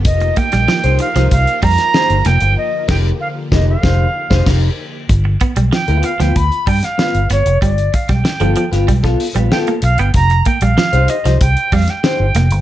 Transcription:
<<
  \new Staff \with { instrumentName = "Flute" } { \time 4/4 \key f \lydian \tempo 4 = 95 ees''8 g''4 f''8 f''8 bes''4 g''8 | ees''8 g''8 f''8 ees''16 f''4. r8. | r4 g''8 f''16 g''16 b''8 g''16 f''8. cis''8 | d''8 f''16 g''4. r8. g''8 f''16 g''16 |
bes''8 g''16 f''8. ees''8 g''8 f''16 g''4~ g''16 | }
  \new Staff \with { instrumentName = "Clean electric guitar" } { \time 4/4 \key f \lydian r4 r16 <ees' g' c''>16 r16 <ees' g' c''>16 r4 <ees' g' c''>16 r8. | r8 <ees' g' bes'>8 r8 <ees' g' bes'>8 <ees' g' c''>8 r16 <ees' g' c''>16 <ees' g' bes'>8 r8 | r4 r16 <b f' b'>16 r16 <b f' b'>16 r4 <b f' b'>16 r8. | r4 r16 <b f' a'>16 r16 <b f' b'>16 r16 <b f' a'>16 r16 <b f' b'>16 <b f' a'>16 r8. |
r4 r16 <ees' g' c''>16 r16 <ees' g' c''>16 r4 <ees' g' c''>16 r8. | }
  \new Staff \with { instrumentName = "String machine" } { \time 4/4 \key f \lydian << { <f bes g'>1~ | <f bes g'>1 | r1 | r1 |
r1 | } \\ { ees'1 | d1 | r1 | r1 |
r1 | } >> }
  \new Staff \with { instrumentName = "Clean electric guitar" } { \clef bass \time 4/4 \key f \lydian r8 bes16 g16 f16 r8 f16 r8 g16 r8. bes16 r16 | r1 | r8 b16 g16 f16 r8 f16 r8 g16 r8. b16 r16 | g16 r8 g16 r16 f16 f16 r16 g16 r8 g16 r16 bes16 r16 b16 |
r8 bes16 g16 f16 r8 f16 r8 g16 r8. bes16 r16 | }
  \new Staff \with { instrumentName = "Fingered electric bass" } { \clef bass \time 4/4 \key f \lydian f,,8 r16 bes,,16 r16 c,16 r16 c,16 c,16 r16 f,16 r8 g,,16 f,,16 g,,16 | r8 f,,8 r8 f,,8 f,,8 r16 f,,16 f,,8 r8 | g,,8 r16 b,,16 r16 d,16 r16 d,16 d,16 r16 g,16 r8 g,,16 g,,16 f,,16 | g,,8 r16 b,,16 r16 g,,16 r16 g,,16 b,,8 r16 bes,,16 r8 b,,16 g,,16 |
f,,8 r16 bes,,16 r16 c,16 r16 c,16 c,16 r16 f,16 r8 g,,16 f,,16 g,,16 | }
  \new DrumStaff \with { instrumentName = "Drums" } \drummode { \time 4/4 <hh bd>16 hh16 <hh bd>16 <hh sn>16 sn16 hh16 hh16 <hh sn>16 <hh bd>16 hh16 <hho bd>16 <hh sn>16 sn16 hh16 <hh sn>16 hh16 | r8 <cymc bd sn>8 r8 <bd sn>8 <bd sn>8. <bd sn>16 <cymc bd sn>4 | <hh bd>8 <hh bd>16 hh16 sn16 hh16 hh16 <hh sn>16 <hh bd>16 hh16 <hho bd>16 <hh sn>16 sn16 hh16 <hh sn>16 hh16 | <hh bd>16 hh16 <hh bd>16 <hh bd sn>16 sn16 hh16 hh16 <hh sn>16 <hh bd>16 <hh bd sn>16 hho16 hh16 sn16 hh16 hh16 hh16 |
<hh bd>16 hh16 <hh bd>16 hh16 sn16 hh16 hh16 <hh sn>16 <hh bd>16 hh16 <hho bd>16 <hh sn>16 sn8 <hh sn>16 hh16 | }
>>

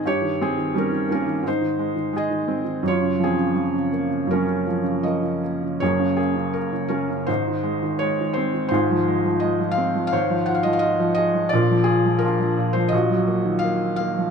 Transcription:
<<
  \new Staff \with { instrumentName = "Felt piano" } { \time 4/4 \key ges \lydian \tempo 4 = 85 << { des''8 aes'8 bes'8 bes'8 c''4 ees''4 | des''8 aes'4 r8 bes'4 ees''4 | des''8 aes'8 bes'8 bes'8 c''4 des''8 c''8 | c''4 ees''8 f''8 f''8 ges''32 f''32 ees''32 f''32 ees''8 ees''8 |
d''8 aes'8 bes'8. c''16 ees''4 f''8 f''8 | } \\ { g'8 c'8 des'8 des'8 ees'4 aes'4 | f'8 c'4 r8 des'4 bes'4 | <aes' bes'>2 ees'2 | <f' aes'>2 <c'' des''>2 |
<f' bes'>4 <d' f'>4 ges'2 | } >> }
  \new Staff \with { instrumentName = "Felt piano" } { \clef bass \time 4/4 \key ges \lydian g,16 ees8 ees16 g16 ees16 bes16 ees16 aes,16 ees16 aes16 ees16 aes16 ees16 c'16 ees16 | ges,16 des16 f16 des16 f16 des16 bes16 des16 ges,16 des16 f16 des16 f16 des16 bes16 des16 | <ges,, ges,>16 des16 bes16 des16 bes16 des16 des'16 des16 <aes,, aes,>16 ees16 aes16 ees16 aes16 ees16 c'16 ees16 | <aes,, aes,>16 f16 aes16 f16 aes16 f16 c'16 f16 <aes,, aes,>16 f16 f'16 f16 f'16 f16 aes'16 f16 |
<bes,, bes,>16 f16 bes,16 f16 bes,16 f16 bes,16 f16 <bes,, bes,>16 ges16 bes16 ees16 bes8 bes16 f16 | }
>>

